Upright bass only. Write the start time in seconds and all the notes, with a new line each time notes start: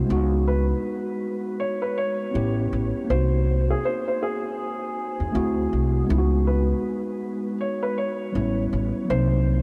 0.10 C#2
2.35 A1
2.73 A1
3.10 C2
5.20 E2
5.35 D2
5.73 C2
6.10 C#2
8.35 A1
8.73 A1
9.10 C2